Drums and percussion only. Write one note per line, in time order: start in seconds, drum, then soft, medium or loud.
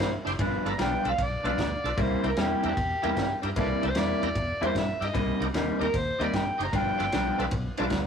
0.00 kick medium
0.00 snare loud
0.00 ride medium
0.27 snare soft
0.27 ride medium
0.39 kick loud
0.39 ride loud
0.66 ride medium
0.79 snare loud
0.79 ride medium
1.05 ride medium
1.18 kick loud
1.18 ride medium
1.45 ride medium
1.58 kick medium
1.58 snare loud
1.58 ride medium
1.85 ride medium
1.98 kick loud
1.98 ride medium
2.24 ride medium
2.37 snare loud
2.37 ride medium
2.63 ride medium
2.77 kick loud
2.77 ride medium
3.03 ride medium
3.17 kick medium
3.17 snare loud
3.17 ride medium
3.43 ride medium
3.56 kick loud
3.56 ride loud
3.83 ride medium
3.95 snare loud
3.95 ride loud
4.23 ride medium
4.35 kick loud
4.35 ride medium
4.63 ride medium
4.75 kick medium
4.75 snare loud
4.75 ride medium
5.02 ride medium
5.15 kick loud
5.15 ride medium
5.42 ride medium
5.54 snare loud
5.54 ride medium
5.81 ride medium
5.94 kick loud
5.94 ride medium
6.21 ride medium
6.33 kick medium
6.33 snare loud
6.33 ride medium
6.60 ride medium
6.73 kick loud
6.73 ride medium
7.00 ride medium
7.12 snare loud
7.12 ride medium
7.40 ride medium
7.51 kick loud
7.51 ride medium
7.77 ride medium
7.90 kick medium
7.90 snare loud
7.90 ride medium